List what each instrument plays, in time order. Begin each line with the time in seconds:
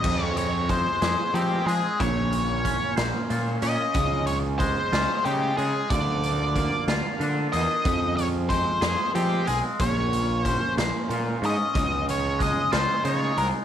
Already playing: lead electric guitar D#5
0.04 picked electric bass F2, clean electric guitar F2, harmonium G#3 F4, kick, crash
0.24 lead electric guitar C#5
0.37 lead electric guitar C#5, closed hi-hat
0.69 clean electric guitar G#3, lead electric guitar C5, kick, closed hi-hat
1.02 picked electric bass F2, clean electric guitar G#4, snare, closed hi-hat
1.34 picked electric bass F3, clean electric guitar C4, lead electric guitar G4, closed hi-hat
1.66 picked electric bass F3, clean electric guitar G#3, lead electric guitar G#4, closed hi-hat
2.00 picked electric bass A#1, clean electric guitar A#2, harmonium A#3 C#4 F4, lead electric guitar C#5, kick, closed hi-hat
2.33 closed hi-hat
2.65 clean electric guitar C#4, kick, closed hi-hat
2.96 picked electric bass A#1, clean electric guitar C5, snare, closed hi-hat
3.30 picked electric bass A#2, clean electric guitar F4, closed hi-hat
3.62 picked electric bass A#2, clean electric guitar C#4, lead electric guitar D#5, closed hi-hat
3.94 picked electric bass C#2, clean electric guitar C#3, harmonium G#3 D#4 F4, kick, closed hi-hat
4.27 lead electric guitar C#5, closed hi-hat
4.59 clean electric guitar G#3, lead electric guitar C5, kick, closed hi-hat
4.92 picked electric bass C#2, clean electric guitar F4, snare, closed hi-hat
5.25 picked electric bass C#3, clean electric guitar D#4, lead electric guitar G4, closed hi-hat
5.57 picked electric bass C#3, clean electric guitar G#3, lead electric guitar G#4, closed hi-hat
5.90 picked electric bass D2, clean electric guitar D3, harmonium D3 F3 A#3 F4, lead electric guitar D5, kick, closed hi-hat
6.23 closed hi-hat
6.56 clean electric guitar A#3, kick, closed hi-hat
6.88 picked electric bass D2, clean electric guitar F4, snare, closed hi-hat
7.20 picked electric bass D3, clean electric guitar D4, closed hi-hat
7.53 picked electric bass E2, clean electric guitar A#3, lead electric guitar D#5, closed hi-hat
7.85 picked electric bass F2, clean electric guitar F2, harmonium G#3 F4, kick, closed hi-hat
8.17 lead electric guitar C#5, closed hi-hat
8.49 clean electric guitar G#3, lead electric guitar C5, kick, closed hi-hat
8.81 picked electric bass F2, clean electric guitar G#4, snare, closed hi-hat
9.15 picked electric bass F3, clean electric guitar C4, lead electric guitar G4, closed hi-hat
9.47 picked electric bass B1, clean electric guitar G#3, lead electric guitar G#4, closed hi-hat
9.79 picked electric bass A#1, clean electric guitar A#2, harmonium A#3 C#4, lead electric guitar C#5, kick, closed hi-hat
10.13 closed hi-hat
10.43 clean electric guitar C#4, lead electric guitar C5, kick, closed hi-hat
10.77 picked electric bass A#1, clean electric guitar C5, snare, closed hi-hat
11.10 picked electric bass A#2, clean electric guitar F4, closed hi-hat
11.42 picked electric bass G#2, clean electric guitar C#4, lead electric guitar D#5, closed hi-hat
11.74 picked electric bass C#2, clean electric guitar C#3, harmonium G#3 D#4, kick, closed hi-hat
12.09 lead electric guitar C#5, closed hi-hat
12.39 clean electric guitar G#3, lead electric guitar D#5, kick, closed hi-hat
12.72 picked electric bass C#2, clean electric guitar F4, lead electric guitar C5, snare, closed hi-hat
13.05 picked electric bass C#3, clean electric guitar D#4, lead electric guitar C#5, closed hi-hat
13.37 picked electric bass C2, clean electric guitar G#3, lead electric guitar A#4, closed hi-hat